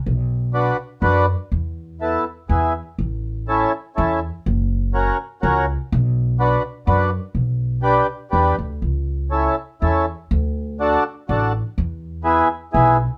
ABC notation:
X:1
M:3/4
L:1/8
Q:"Swing" 1/4=123
K:A
V:1 name="Accordion"
z2 [DFB] z [DFB] z | z2 [B,EA] z [B,EG] z | z2 [CEA] z [CEA] z | z2 [CF^A] z [CFA] z |
z2 [DFB] z [DFB] z | z2 [D=GB] z [DGB] z | z2 [CEA] z [CEA] z | z2 [DFA] z [DFA] z |
z2 [B,EG] z [B,EG] z |]
V:2 name="Upright bass" clef=bass
B,,,4 F,,2 | E,,4 E,,2 | A,,,4 E,,2 | F,,,4 C,,2 |
B,,,4 F,,2 | B,,,4 E,, D,, | C,,4 E,,2 | D,,4 A,,,2 |
E,,4 B,,,2 |]